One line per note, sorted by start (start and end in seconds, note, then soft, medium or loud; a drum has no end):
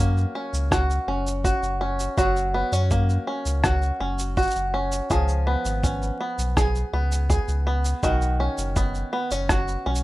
0.00 0.26 F#2 loud
0.00 2.16 F#3 medium
0.00 1.08 A#3 medium
0.00 0.34 C#4 medium
0.00 0.71 F#4 medium
0.17 shaker soft
0.35 1.08 C#4 medium
0.53 0.99 C#2 medium
0.53 shaker medium
0.71 1.43 F#4 medium
0.71 kick medium
0.71 cross-stick medium
0.71 shaker medium
0.90 shaker soft
1.07 1.53 F#1 medium
1.07 1.81 C#4 medium
1.27 shaker medium
1.44 2.17 F#4 medium
1.44 kick medium
1.44 shaker medium
1.62 2.08 F#1 medium
1.62 shaker soft
1.81 2.54 C#4 medium
2.00 shaker medium
2.17 2.63 F#1 loud
2.17 5.10 F#3 medium
2.17 3.63 F#4 medium
2.17 kick loud
2.17 shaker medium
2.36 shaker soft
2.54 2.73 B3 medium
2.72 3.18 F#2 loud
2.72 3.26 C#4 soft
2.72 shaker medium
2.91 4.00 A#3 medium
2.91 kick medium
2.91 shaker medium
3.09 shaker soft
3.27 4.00 C#4 medium
3.45 3.91 C#2 medium
3.45 shaker medium
3.64 4.36 F#4 medium
3.64 kick loud
3.64 cross-stick medium
3.64 shaker medium
3.82 shaker soft
4.00 4.46 F#1 medium
4.00 4.74 C#4 medium
4.19 shaker medium
4.37 5.10 F#4 medium
4.37 kick medium
4.37 shaker soft
4.42 shaker soft
4.46 shaker soft
4.51 shaker soft
4.55 5.01 F#1 medium
4.55 shaker soft
4.74 5.46 C#4 medium
4.92 shaker medium
5.10 5.56 C#2 medium
5.10 8.03 F3 medium
5.10 6.56 G#4 medium
5.10 kick loud
5.10 shaker medium
5.29 shaker soft
5.47 6.20 B3 medium
5.65 6.11 G#1 medium
5.65 shaker medium
5.83 6.20 C#4 medium
5.83 kick loud
5.83 shaker medium
6.02 shaker soft
6.20 6.93 B3 medium
6.38 6.84 B1 medium
6.38 shaker medium
6.57 7.29 G#4 medium
6.57 kick loud
6.57 cross-stick medium
6.57 shaker medium
6.75 shaker soft
6.93 7.39 C#2 medium
6.93 7.67 B3 medium
7.12 shaker medium
7.30 8.03 G#4 medium
7.30 kick medium
7.30 shaker medium
7.48 7.94 C#2 medium
7.48 shaker soft
7.67 8.43 B3 medium
7.85 shaker medium
8.03 8.49 B1 loud
8.03 10.03 D#3 medium
8.03 9.48 F#4 medium
8.03 kick loud
8.03 shaker medium
8.21 shaker soft
8.40 9.12 C#4 medium
8.58 9.04 F#1 medium
8.58 shaker medium
8.76 9.12 B3 medium
8.76 kick loud
8.76 shaker medium
8.95 shaker soft
9.13 9.31 B3 medium
9.31 9.77 F#1 medium
9.31 9.85 C#4 soft
9.31 shaker medium
9.49 10.03 F#4 medium
9.49 kick loud
9.49 cross-stick medium
9.49 shaker medium
9.68 shaker soft
9.86 10.03 B1 medium
9.86 10.03 C#4 medium
9.95 shaker medium